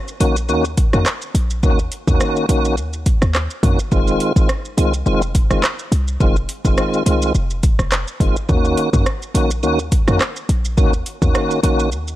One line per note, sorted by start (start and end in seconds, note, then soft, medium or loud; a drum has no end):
0.08 shaker medium
0.20 0.51 A#1 medium
0.20 0.36 D#3 medium
0.20 0.36 A#3 medium
0.20 0.36 C#4 medium
0.20 0.37 F#4 medium
0.20 closed hi-hat medium
0.20 shaker medium
0.36 shaker medium
0.49 0.90 D#2 loud
0.49 0.65 D#3 medium
0.49 0.65 A#3 medium
0.49 0.65 C#4 medium
0.49 0.65 F#4 loud
0.49 shaker medium
0.65 shaker medium
0.77 kick medium
0.77 closed hi-hat medium
0.77 shaker medium
0.93 1.05 F2 medium
0.93 1.06 D#3 medium
0.93 1.06 A#3 medium
0.93 1.06 C#4 medium
0.93 1.06 F#4 medium
0.93 cross-stick medium
0.93 shaker medium
1.06 cross-stick loud
1.06 clap loud
1.06 shaker medium
1.22 shaker medium
1.35 1.65 A#1 medium
1.35 closed hi-hat medium
1.35 shaker medium
1.50 shaker medium
1.63 1.89 D#2 loud
1.63 1.79 D#3 loud
1.63 1.79 A#3 medium
1.63 1.79 C#4 medium
1.63 1.79 F#4 loud
1.63 kick loud
1.63 shaker medium
1.79 shaker medium
1.92 closed hi-hat medium
1.92 shaker soft
2.08 2.19 D#2 medium
2.08 2.46 D#3 medium
2.08 2.46 A#3 medium
2.08 2.46 C#4 medium
2.08 2.46 F#4 medium
2.08 kick medium
2.08 shaker medium
2.20 cross-stick loud
2.20 shaker medium
2.36 shaker medium
2.49 2.79 A#1 medium
2.49 2.75 D#3 medium
2.49 2.76 A#3 medium
2.49 2.76 C#4 medium
2.49 2.76 F#4 medium
2.49 closed hi-hat medium
2.49 shaker medium
2.65 shaker medium
2.77 3.18 D#2 loud
2.77 shaker medium
2.93 shaker medium
3.06 kick medium
3.06 closed hi-hat medium
3.06 shaker medium
3.22 3.48 D#2 medium
3.22 cross-stick medium
3.22 shaker medium
3.34 cross-stick loud
3.34 clap loud
3.34 shaker medium
3.50 shaker medium
3.63 3.78 F2 medium
3.63 3.79 D#3 medium
3.63 3.79 A#3 medium
3.63 3.79 C#4 medium
3.63 3.79 F#4 medium
3.63 kick medium
3.63 closed hi-hat medium
3.63 shaker soft
3.79 shaker medium
3.92 4.18 F1 loud
3.92 4.32 D#3 loud
3.92 4.33 G#3 medium
3.92 4.33 C4 medium
3.92 4.33 F4 loud
3.92 kick loud
3.92 shaker medium
4.08 shaker medium
4.20 closed hi-hat medium
4.20 shaker medium
4.36 4.48 G#1 loud
4.36 4.49 D#3 medium
4.36 4.49 G#3 medium
4.36 4.49 C4 medium
4.36 4.49 F4 medium
4.36 kick medium
4.36 shaker medium
4.49 cross-stick loud
4.49 shaker medium
4.65 shaker medium
4.77 5.04 C2 medium
4.77 4.93 D#3 medium
4.77 4.93 G#3 medium
4.77 4.94 C4 medium
4.77 4.94 F4 medium
4.77 closed hi-hat medium
4.77 shaker medium
4.94 shaker medium
5.06 5.47 F1 loud
5.06 5.22 D#3 medium
5.06 5.22 G#3 medium
5.06 5.22 C4 medium
5.06 5.22 F4 loud
5.06 shaker medium
5.22 shaker medium
5.35 kick loud
5.35 closed hi-hat medium
5.35 shaker medium
5.50 5.62 F#1 medium
5.50 5.63 D#3 medium
5.50 5.63 G#3 medium
5.50 5.63 C4 medium
5.50 5.63 F4 medium
5.50 cross-stick medium
5.50 shaker medium
5.63 cross-stick loud
5.63 clap loud
5.63 shaker medium
5.79 shaker medium
5.92 6.18 C2 loud
5.92 closed hi-hat medium
5.92 shaker soft
6.08 shaker medium
6.20 6.47 F1 loud
6.20 6.36 D#3 loud
6.20 6.36 G#3 medium
6.20 6.36 C4 medium
6.20 6.37 F4 loud
6.20 kick loud
6.20 shaker medium
6.36 shaker medium
6.49 closed hi-hat medium
6.49 shaker soft
6.65 6.76 F1 loud
6.65 7.03 D#3 medium
6.65 7.03 G#3 medium
6.65 7.03 C4 medium
6.65 7.03 F4 medium
6.65 kick loud
6.65 shaker medium
6.78 cross-stick loud
6.78 shaker medium
6.94 shaker medium
7.06 7.32 C2 medium
7.06 7.33 D#3 medium
7.06 7.33 G#3 medium
7.06 7.33 C4 medium
7.06 7.33 F4 medium
7.06 closed hi-hat medium
7.06 shaker medium
7.22 shaker medium
7.35 7.75 F1 loud
7.35 shaker medium
7.50 shaker medium
7.63 kick loud
7.63 closed hi-hat medium
7.63 shaker medium
7.79 8.05 F1 medium
7.79 cross-stick medium
7.79 shaker medium
7.92 cross-stick loud
7.92 clap loud
7.92 shaker medium
8.08 shaker medium
8.20 8.35 F#1 medium
8.20 8.36 D#3 medium
8.20 8.36 G#3 medium
8.20 8.36 C4 medium
8.20 8.37 F4 medium
8.20 kick medium
8.20 closed hi-hat medium
8.20 shaker soft
8.36 shaker medium
8.49 8.75 D#2 loud
8.49 8.90 D#3 loud
8.49 8.90 A#3 medium
8.49 8.90 C#4 medium
8.49 8.90 F#4 loud
8.49 kick loud
8.49 shaker medium
8.65 shaker medium
8.77 closed hi-hat medium
8.77 shaker medium
8.93 9.05 F#2 medium
8.93 9.06 D#3 medium
8.93 9.06 A#3 medium
8.93 9.06 C#4 medium
8.93 9.06 F#4 medium
8.93 kick medium
8.93 shaker medium
9.06 cross-stick loud
9.06 shaker medium
9.22 shaker medium
9.34 9.65 A#1 medium
9.34 9.51 D#3 medium
9.34 9.51 A#3 medium
9.34 9.51 C#4 medium
9.34 9.51 F#4 medium
9.34 closed hi-hat medium
9.34 shaker medium
9.51 shaker medium
9.63 10.04 D#2 loud
9.63 9.79 D#3 medium
9.63 9.79 A#3 medium
9.63 9.79 C#4 medium
9.63 9.79 F#4 loud
9.63 shaker medium
9.79 shaker medium
9.92 kick medium
9.92 closed hi-hat medium
9.92 shaker medium
10.08 10.19 F2 medium
10.08 10.20 D#3 medium
10.08 10.20 A#3 medium
10.08 10.20 C#4 medium
10.08 10.21 F#4 medium
10.08 cross-stick medium
10.08 shaker medium
10.20 cross-stick loud
10.20 clap loud
10.20 shaker medium
10.36 shaker medium
10.49 10.79 A#1 medium
10.49 closed hi-hat medium
10.49 shaker soft
10.65 shaker medium
10.77 11.04 D#2 loud
10.77 10.93 D#3 loud
10.77 10.93 A#3 medium
10.77 10.94 C#4 medium
10.77 10.94 F#4 loud
10.77 kick loud
10.77 shaker medium
10.93 shaker medium
11.06 closed hi-hat medium
11.06 shaker soft
11.22 11.33 D#2 medium
11.22 11.60 D#3 medium
11.22 11.60 A#3 medium
11.22 11.60 C#4 medium
11.22 11.60 F#4 medium
11.22 kick loud
11.22 shaker medium
11.35 cross-stick loud
11.35 shaker medium
11.51 shaker medium
11.63 11.93 A#1 medium
11.63 11.90 D#3 medium
11.63 11.90 A#3 medium
11.63 11.90 C#4 medium
11.63 11.90 F#4 medium
11.63 closed hi-hat medium
11.63 shaker medium
11.79 shaker medium
11.92 12.16 D#2 loud
11.92 shaker medium
12.08 shaker medium